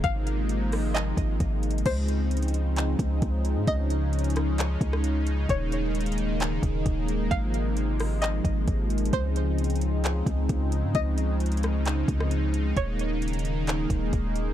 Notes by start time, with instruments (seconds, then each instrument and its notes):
0.04 808-style bass G#1, analog synth pad C3 F3 G#3 A#3 D#4, synth pluck F5, kick, closed hi-hat
0.27 closed hi-hat
0.49 closed hi-hat
0.72 cross-stick, open hi-hat
0.94 synth pluck D#5, clap, closed hi-hat
1.17 808-style bass G#1, kick, closed hi-hat
1.40 808-style bass G#1, kick, closed hi-hat
1.63 closed hi-hat
1.71 closed hi-hat
1.78 closed hi-hat
1.86 808-style bass C#2, analog synth pad C#3 F3 G#3 C4 D#4, synth pluck C5, kick, closed hi-hat, crash
2.08 closed hi-hat
2.31 closed hi-hat
2.37 closed hi-hat
2.42 closed hi-hat
2.48 closed hi-hat
2.54 closed hi-hat
2.76 clap, closed hi-hat
2.99 808-style bass C#2, kick, closed hi-hat
3.22 808-style bass C#2, kick, closed hi-hat
3.45 closed hi-hat
3.56 808-style bass G#2
3.67 808-style bass C#2, analog synth pad C#4, synth pluck D#5, kick, closed hi-hat
3.90 closed hi-hat
4.13 closed hi-hat
4.19 closed hi-hat
4.24 closed hi-hat
4.30 closed hi-hat
4.36 cross-stick, closed hi-hat
4.58 clap, closed hi-hat
4.81 808-style bass C#2, kick, closed hi-hat
4.93 cross-stick
5.04 closed hi-hat
5.27 closed hi-hat
5.49 808-style bass D#1, analog synth pad D#3 A#3, synth pluck C#5, kick, closed hi-hat
5.72 closed hi-hat
5.95 closed hi-hat
6.01 closed hi-hat
6.06 closed hi-hat
6.12 closed hi-hat
6.18 closed hi-hat
6.40 clap, closed hi-hat
6.63 808-style bass D#1, kick, closed hi-hat
6.86 808-style bass D#1, kick, closed hi-hat
7.08 closed hi-hat
7.31 808-style bass G#1, analog synth pad C3 F3, synth pluck F5, kick, closed hi-hat
7.54 closed hi-hat
7.77 closed hi-hat
8.00 cross-stick, open hi-hat
8.22 synth pluck D#5, clap, closed hi-hat
8.45 808-style bass G#1, kick, closed hi-hat
8.68 808-style bass G#1, kick, closed hi-hat
8.90 closed hi-hat
8.98 closed hi-hat
9.05 closed hi-hat
9.13 808-style bass C#2, analog synth pad C#3 C4 D#4, synth pluck C5, kick, closed hi-hat
9.36 closed hi-hat
9.58 closed hi-hat
9.64 closed hi-hat
9.70 closed hi-hat
9.76 closed hi-hat
9.81 closed hi-hat
10.04 clap, closed hi-hat
10.26 808-style bass C#2, kick, closed hi-hat
10.49 808-style bass C#2, kick, closed hi-hat
10.72 closed hi-hat
10.83 808-style bass G#2
10.95 808-style bass C#2, synth pluck D#5, kick, closed hi-hat
11.18 closed hi-hat
11.40 closed hi-hat
11.46 closed hi-hat
11.52 closed hi-hat
11.57 closed hi-hat
11.63 cross-stick, closed hi-hat
11.86 clap, closed hi-hat
12.08 808-style bass C#2, kick, closed hi-hat
12.20 cross-stick
12.31 closed hi-hat
12.54 closed hi-hat
12.77 808-style bass D#1, analog synth pad D#3 G#3 A#3, synth pluck C#5, kick, closed hi-hat
12.99 closed hi-hat
13.22 closed hi-hat
13.28 closed hi-hat
13.33 closed hi-hat
13.39 closed hi-hat
13.45 closed hi-hat
13.67 clap, closed hi-hat
13.90 808-style bass D#1, kick, closed hi-hat
14.13 808-style bass D#1, kick, closed hi-hat
14.36 closed hi-hat